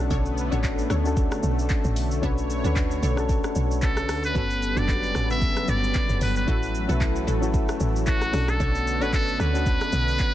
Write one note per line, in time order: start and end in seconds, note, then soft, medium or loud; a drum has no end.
0.00 4.32 D3 medium
0.00 4.31 A3 medium
0.00 1.94 B3 medium
0.00 0.37 C#4 loud
0.00 0.37 D4 medium
0.00 0.38 F#4 medium
0.00 0.38 A4 loud
0.10 0.50 B1 loud
0.10 0.22 D4 loud
0.10 0.22 A4 medium
0.10 0.22 C#5 loud
0.10 kick loud
0.10 shaker medium
0.26 shaker medium
0.38 shaker medium
0.51 0.89 A1 medium
0.51 0.93 C#4 medium
0.51 0.87 D4 medium
0.51 0.93 D4 medium
0.51 0.94 F#4 medium
0.51 0.87 A4 medium
0.51 0.94 A4 medium
0.51 0.88 C#5 medium
0.51 shaker medium
0.64 kick loud
0.64 clap loud
0.64 shaker medium
0.78 shaker medium
0.90 1.30 D2 medium
0.90 1.15 D4 medium
0.90 1.15 A4 medium
0.90 1.15 C#5 medium
0.90 cross-stick loud
0.90 shaker medium
1.04 1.89 C#4 medium
1.04 1.89 D4 medium
1.04 1.90 F#4 medium
1.04 1.90 A4 loud
1.04 shaker medium
1.17 kick loud
1.17 shaker medium
1.31 cross-stick loud
1.31 shaker medium
1.43 1.69 B1 medium
1.43 shaker loud
1.59 shaker medium
1.69 kick loud
1.69 clap loud
1.69 shaker medium
1.84 1.98 A1 medium
1.84 shaker medium
1.96 2.22 B1 medium
1.96 4.33 C#5 medium
1.96 open hi-hat medium
1.96 shaker medium
2.11 shaker medium
2.22 2.63 B1 loud
2.22 2.55 C#4 medium
2.22 2.35 D4 loud
2.22 2.55 D4 medium
2.22 2.56 F#4 medium
2.22 2.35 A4 medium
2.22 2.57 B4 loud
2.22 2.35 C#5 loud
2.22 kick loud
2.22 shaker medium
2.38 shaker medium
2.50 shaker medium
2.63 3.01 D2 medium
2.63 3.05 C#4 medium
2.63 3.00 D4 medium
2.63 3.06 D4 medium
2.63 3.06 F#4 medium
2.63 3.00 A4 medium
2.63 3.07 B4 loud
2.63 3.00 C#5 medium
2.63 shaker medium
2.76 kick loud
2.76 clap loud
2.76 shaker medium
2.91 shaker medium
3.02 3.42 B1 medium
3.02 3.27 D4 medium
3.02 3.27 A4 medium
3.02 3.28 C#5 medium
3.02 shaker medium
3.16 4.01 C#4 medium
3.16 4.02 D4 medium
3.16 4.02 F#4 medium
3.16 4.03 A4 loud
3.16 cross-stick loud
3.16 shaker medium
3.29 kick loud
3.29 shaker medium
3.44 cross-stick loud
3.44 shaker medium
3.55 4.10 B1 medium
3.55 shaker loud
3.71 shaker medium
3.82 4.21 A4 medium
3.82 kick loud
3.82 clap medium
3.82 shaker medium
3.97 cross-stick loud
3.97 shaker medium
4.09 4.34 D2 medium
4.09 cross-stick loud
4.09 open hi-hat medium
4.09 shaker medium
4.24 4.79 B4 loud
4.24 shaker medium
4.34 4.75 G1 loud
4.34 8.30 F#3 medium
4.34 6.46 G3 medium
4.34 4.67 B3 medium
4.34 6.46 B3 medium
4.34 4.47 C#4 loud
4.34 4.68 C#4 medium
4.34 4.47 F#4 medium
4.34 4.68 F#4 medium
4.34 4.47 A4 medium
4.34 4.69 A4 medium
4.34 4.47 B4 loud
4.34 kick loud
4.34 shaker medium
4.50 shaker medium
4.63 shaker medium
4.75 5.14 F#1 medium
4.75 5.17 B3 medium
4.75 5.12 D4 medium
4.75 5.18 D4 medium
4.75 5.12 F#4 medium
4.75 5.19 F#4 medium
4.75 5.12 A4 medium
4.75 5.12 B4 medium
4.75 5.19 B4 medium
4.75 5.30 D5 loud
4.75 shaker soft
4.88 kick loud
4.88 clap loud
4.88 shaker medium
5.03 shaker medium
5.15 5.55 A1 medium
5.15 5.40 C#4 medium
5.15 5.40 F#4 medium
5.15 5.40 A4 medium
5.15 5.40 B4 medium
5.15 cross-stick loud
5.15 shaker medium
5.29 6.14 C#3 medium
5.29 6.14 B3 medium
5.29 6.15 F#4 medium
5.29 6.15 B4 medium
5.29 5.71 E5 loud
5.29 shaker medium
5.41 kick loud
5.41 shaker medium
5.56 cross-stick loud
5.56 shaker medium
5.68 5.94 G1 loud
5.68 6.22 D5 loud
5.68 shaker loud
5.84 shaker medium
5.94 kick loud
5.94 clap loud
5.94 shaker medium
6.09 6.21 F#1 medium
6.09 shaker medium
6.21 6.47 G1 medium
6.21 6.35 B4 medium
6.21 open hi-hat medium
6.21 shaker medium
6.36 6.86 B4 medium
6.36 shaker medium
6.47 6.88 A1 loud
6.47 8.32 E3 medium
6.47 8.32 A3 medium
6.47 6.80 C#4 medium
6.47 6.59 E4 loud
6.47 6.80 E4 medium
6.47 6.59 F#4 medium
6.47 6.81 F#4 medium
6.47 6.60 A4 loud
6.47 6.81 A4 medium
6.47 kick loud
6.47 shaker medium
6.63 shaker medium
6.75 shaker loud
6.88 7.26 B1 medium
6.88 7.30 C#4 medium
6.88 7.24 E4 medium
6.88 7.30 E4 medium
6.88 7.25 F#4 medium
6.88 7.31 F#4 medium
6.88 7.25 A4 medium
6.88 7.31 B4 medium
6.88 shaker medium
7.01 kick loud
7.01 clap loud
7.01 shaker medium
7.16 shaker medium
7.27 7.67 A1 medium
7.27 7.52 E4 medium
7.27 7.52 F#4 medium
7.27 7.52 A4 medium
7.27 shaker medium
7.41 8.26 C#4 medium
7.41 8.26 E4 medium
7.41 8.27 F#4 medium
7.41 8.28 A4 loud
7.41 shaker medium
7.54 kick loud
7.54 shaker medium
7.69 cross-stick loud
7.69 shaker medium
7.80 8.32 A1 loud
7.80 shaker loud
7.96 shaker medium
8.06 8.51 F#4 loud
8.06 kick loud
8.06 clap medium
8.06 shaker medium
8.21 cross-stick medium
8.21 shaker medium
8.33 8.59 B1 loud
8.33 10.34 D3 medium
8.33 10.34 A3 medium
8.33 10.34 B3 medium
8.33 8.86 C#4 medium
8.33 8.87 D4 medium
8.33 8.87 F#4 medium
8.33 8.88 A4 medium
8.33 cross-stick loud
8.33 open hi-hat medium
8.33 shaker medium
8.48 9.04 A4 loud
8.48 cross-stick loud
8.48 shaker medium
8.60 9.03 B1 loud
8.60 8.72 D4 medium
8.60 8.72 A4 medium
8.60 8.72 C#5 loud
8.60 kick loud
8.60 shaker medium
8.75 shaker medium
8.87 shaker medium
9.00 9.38 A1 medium
9.00 9.42 C#4 medium
9.00 9.37 D4 medium
9.00 9.43 D4 medium
9.00 9.43 F#4 medium
9.00 9.37 A4 medium
9.00 9.44 A4 medium
9.00 9.13 B4 loud
9.00 9.37 C#5 medium
9.00 shaker medium
9.13 9.38 A4 loud
9.13 kick loud
9.13 clap loud
9.13 shaker medium
9.28 shaker medium
9.39 9.80 D2 loud
9.39 9.64 D4 medium
9.39 9.64 A4 medium
9.39 10.34 B4 loud
9.39 9.65 C#5 medium
9.39 cross-stick medium
9.39 shaker medium
9.53 10.34 C#4 medium
9.53 10.34 D4 medium
9.53 10.34 F#4 medium
9.53 10.34 A4 medium
9.53 shaker medium
9.66 kick loud
9.66 shaker medium
9.81 cross-stick loud
9.81 shaker medium
9.92 10.18 B1 loud
9.92 shaker loud
10.08 shaker medium
10.19 kick loud
10.19 clap medium
10.19 shaker medium